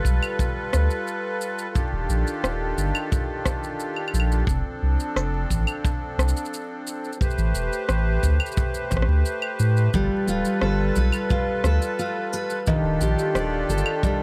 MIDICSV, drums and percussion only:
0, 0, Header, 1, 2, 480
1, 0, Start_track
1, 0, Tempo, 681818
1, 1238, Time_signature, 4, 2, 24, 8
1, 10017, End_track
2, 0, Start_track
2, 0, Title_t, "Drums"
2, 34, Note_on_c, 9, 36, 57
2, 41, Note_on_c, 9, 82, 72
2, 105, Note_off_c, 9, 36, 0
2, 112, Note_off_c, 9, 82, 0
2, 159, Note_on_c, 9, 75, 77
2, 163, Note_on_c, 9, 82, 29
2, 230, Note_off_c, 9, 75, 0
2, 234, Note_off_c, 9, 82, 0
2, 276, Note_on_c, 9, 36, 101
2, 280, Note_on_c, 9, 82, 39
2, 347, Note_off_c, 9, 36, 0
2, 350, Note_off_c, 9, 82, 0
2, 515, Note_on_c, 9, 37, 73
2, 519, Note_on_c, 9, 82, 73
2, 585, Note_off_c, 9, 37, 0
2, 590, Note_off_c, 9, 82, 0
2, 636, Note_on_c, 9, 82, 28
2, 706, Note_off_c, 9, 82, 0
2, 757, Note_on_c, 9, 82, 41
2, 827, Note_off_c, 9, 82, 0
2, 995, Note_on_c, 9, 82, 66
2, 1065, Note_off_c, 9, 82, 0
2, 1116, Note_on_c, 9, 82, 31
2, 1187, Note_off_c, 9, 82, 0
2, 1236, Note_on_c, 9, 36, 102
2, 1237, Note_on_c, 9, 82, 43
2, 1306, Note_off_c, 9, 36, 0
2, 1307, Note_off_c, 9, 82, 0
2, 1478, Note_on_c, 9, 82, 70
2, 1549, Note_off_c, 9, 82, 0
2, 1600, Note_on_c, 9, 82, 32
2, 1671, Note_off_c, 9, 82, 0
2, 1717, Note_on_c, 9, 37, 75
2, 1721, Note_on_c, 9, 82, 41
2, 1787, Note_off_c, 9, 37, 0
2, 1792, Note_off_c, 9, 82, 0
2, 1958, Note_on_c, 9, 82, 73
2, 2029, Note_off_c, 9, 82, 0
2, 2075, Note_on_c, 9, 75, 80
2, 2080, Note_on_c, 9, 82, 32
2, 2146, Note_off_c, 9, 75, 0
2, 2150, Note_off_c, 9, 82, 0
2, 2197, Note_on_c, 9, 36, 118
2, 2197, Note_on_c, 9, 82, 42
2, 2267, Note_off_c, 9, 36, 0
2, 2268, Note_off_c, 9, 82, 0
2, 2433, Note_on_c, 9, 37, 75
2, 2434, Note_on_c, 9, 36, 99
2, 2437, Note_on_c, 9, 82, 71
2, 2503, Note_off_c, 9, 37, 0
2, 2504, Note_off_c, 9, 36, 0
2, 2507, Note_off_c, 9, 82, 0
2, 2560, Note_on_c, 9, 82, 34
2, 2631, Note_off_c, 9, 82, 0
2, 2675, Note_on_c, 9, 82, 43
2, 2745, Note_off_c, 9, 82, 0
2, 2791, Note_on_c, 9, 75, 33
2, 2862, Note_off_c, 9, 75, 0
2, 2871, Note_on_c, 9, 75, 45
2, 2918, Note_on_c, 9, 82, 68
2, 2941, Note_off_c, 9, 75, 0
2, 2955, Note_on_c, 9, 75, 52
2, 2989, Note_off_c, 9, 82, 0
2, 3025, Note_off_c, 9, 75, 0
2, 3040, Note_on_c, 9, 82, 29
2, 3110, Note_off_c, 9, 82, 0
2, 3147, Note_on_c, 9, 36, 115
2, 3161, Note_on_c, 9, 82, 43
2, 3217, Note_off_c, 9, 36, 0
2, 3231, Note_off_c, 9, 82, 0
2, 3519, Note_on_c, 9, 82, 33
2, 3589, Note_off_c, 9, 82, 0
2, 3636, Note_on_c, 9, 37, 75
2, 3640, Note_on_c, 9, 82, 44
2, 3706, Note_off_c, 9, 37, 0
2, 3711, Note_off_c, 9, 82, 0
2, 3876, Note_on_c, 9, 36, 56
2, 3880, Note_on_c, 9, 82, 81
2, 3946, Note_off_c, 9, 36, 0
2, 3950, Note_off_c, 9, 82, 0
2, 3994, Note_on_c, 9, 75, 73
2, 3998, Note_on_c, 9, 82, 32
2, 4064, Note_off_c, 9, 75, 0
2, 4068, Note_off_c, 9, 82, 0
2, 4116, Note_on_c, 9, 36, 112
2, 4120, Note_on_c, 9, 82, 44
2, 4186, Note_off_c, 9, 36, 0
2, 4191, Note_off_c, 9, 82, 0
2, 4359, Note_on_c, 9, 37, 75
2, 4363, Note_on_c, 9, 82, 74
2, 4424, Note_off_c, 9, 82, 0
2, 4424, Note_on_c, 9, 82, 61
2, 4429, Note_off_c, 9, 37, 0
2, 4483, Note_off_c, 9, 82, 0
2, 4483, Note_on_c, 9, 82, 46
2, 4542, Note_off_c, 9, 82, 0
2, 4542, Note_on_c, 9, 82, 39
2, 4601, Note_off_c, 9, 82, 0
2, 4601, Note_on_c, 9, 82, 44
2, 4672, Note_off_c, 9, 82, 0
2, 4838, Note_on_c, 9, 82, 73
2, 4909, Note_off_c, 9, 82, 0
2, 4959, Note_on_c, 9, 82, 13
2, 5017, Note_off_c, 9, 82, 0
2, 5017, Note_on_c, 9, 82, 18
2, 5075, Note_on_c, 9, 36, 110
2, 5081, Note_off_c, 9, 82, 0
2, 5081, Note_on_c, 9, 82, 42
2, 5142, Note_off_c, 9, 82, 0
2, 5142, Note_on_c, 9, 82, 29
2, 5146, Note_off_c, 9, 36, 0
2, 5198, Note_off_c, 9, 82, 0
2, 5198, Note_on_c, 9, 82, 30
2, 5269, Note_off_c, 9, 82, 0
2, 5316, Note_on_c, 9, 82, 77
2, 5387, Note_off_c, 9, 82, 0
2, 5440, Note_on_c, 9, 82, 32
2, 5510, Note_off_c, 9, 82, 0
2, 5552, Note_on_c, 9, 37, 69
2, 5557, Note_on_c, 9, 82, 44
2, 5623, Note_off_c, 9, 37, 0
2, 5627, Note_off_c, 9, 82, 0
2, 5795, Note_on_c, 9, 36, 54
2, 5797, Note_on_c, 9, 82, 77
2, 5866, Note_off_c, 9, 36, 0
2, 5868, Note_off_c, 9, 82, 0
2, 5912, Note_on_c, 9, 75, 76
2, 5917, Note_on_c, 9, 82, 14
2, 5955, Note_off_c, 9, 82, 0
2, 5955, Note_on_c, 9, 82, 21
2, 5983, Note_off_c, 9, 75, 0
2, 5995, Note_off_c, 9, 82, 0
2, 5995, Note_on_c, 9, 82, 26
2, 6035, Note_off_c, 9, 82, 0
2, 6035, Note_on_c, 9, 36, 118
2, 6035, Note_on_c, 9, 82, 48
2, 6105, Note_off_c, 9, 82, 0
2, 6106, Note_off_c, 9, 36, 0
2, 6155, Note_on_c, 9, 82, 30
2, 6225, Note_off_c, 9, 82, 0
2, 6272, Note_on_c, 9, 37, 30
2, 6276, Note_on_c, 9, 82, 69
2, 6279, Note_on_c, 9, 36, 92
2, 6313, Note_off_c, 9, 37, 0
2, 6313, Note_on_c, 9, 37, 44
2, 6346, Note_off_c, 9, 82, 0
2, 6349, Note_off_c, 9, 36, 0
2, 6353, Note_off_c, 9, 37, 0
2, 6353, Note_on_c, 9, 37, 56
2, 6424, Note_off_c, 9, 37, 0
2, 6517, Note_on_c, 9, 82, 45
2, 6588, Note_off_c, 9, 82, 0
2, 6633, Note_on_c, 9, 75, 66
2, 6703, Note_off_c, 9, 75, 0
2, 6756, Note_on_c, 9, 82, 73
2, 6826, Note_off_c, 9, 82, 0
2, 6877, Note_on_c, 9, 82, 32
2, 6948, Note_off_c, 9, 82, 0
2, 6996, Note_on_c, 9, 82, 44
2, 6997, Note_on_c, 9, 36, 111
2, 7066, Note_off_c, 9, 82, 0
2, 7068, Note_off_c, 9, 36, 0
2, 7238, Note_on_c, 9, 82, 72
2, 7308, Note_off_c, 9, 82, 0
2, 7355, Note_on_c, 9, 82, 31
2, 7426, Note_off_c, 9, 82, 0
2, 7473, Note_on_c, 9, 37, 73
2, 7543, Note_off_c, 9, 37, 0
2, 7716, Note_on_c, 9, 82, 74
2, 7719, Note_on_c, 9, 36, 55
2, 7786, Note_off_c, 9, 82, 0
2, 7790, Note_off_c, 9, 36, 0
2, 7832, Note_on_c, 9, 75, 72
2, 7836, Note_on_c, 9, 82, 31
2, 7902, Note_off_c, 9, 75, 0
2, 7907, Note_off_c, 9, 82, 0
2, 7956, Note_on_c, 9, 82, 42
2, 7958, Note_on_c, 9, 36, 121
2, 8027, Note_off_c, 9, 82, 0
2, 8029, Note_off_c, 9, 36, 0
2, 8194, Note_on_c, 9, 37, 69
2, 8198, Note_on_c, 9, 82, 68
2, 8264, Note_off_c, 9, 37, 0
2, 8269, Note_off_c, 9, 82, 0
2, 8320, Note_on_c, 9, 82, 32
2, 8390, Note_off_c, 9, 82, 0
2, 8441, Note_on_c, 9, 82, 42
2, 8512, Note_off_c, 9, 82, 0
2, 8682, Note_on_c, 9, 82, 71
2, 8752, Note_off_c, 9, 82, 0
2, 8800, Note_on_c, 9, 82, 33
2, 8871, Note_off_c, 9, 82, 0
2, 8918, Note_on_c, 9, 82, 43
2, 8923, Note_on_c, 9, 36, 105
2, 8988, Note_off_c, 9, 82, 0
2, 8993, Note_off_c, 9, 36, 0
2, 9160, Note_on_c, 9, 82, 74
2, 9231, Note_off_c, 9, 82, 0
2, 9284, Note_on_c, 9, 82, 33
2, 9354, Note_off_c, 9, 82, 0
2, 9399, Note_on_c, 9, 37, 67
2, 9404, Note_on_c, 9, 82, 44
2, 9470, Note_off_c, 9, 37, 0
2, 9474, Note_off_c, 9, 82, 0
2, 9643, Note_on_c, 9, 82, 72
2, 9699, Note_off_c, 9, 82, 0
2, 9699, Note_on_c, 9, 82, 32
2, 9755, Note_on_c, 9, 75, 76
2, 9770, Note_off_c, 9, 82, 0
2, 9826, Note_off_c, 9, 75, 0
2, 9878, Note_on_c, 9, 36, 103
2, 9882, Note_on_c, 9, 82, 44
2, 9949, Note_off_c, 9, 36, 0
2, 9953, Note_off_c, 9, 82, 0
2, 10017, End_track
0, 0, End_of_file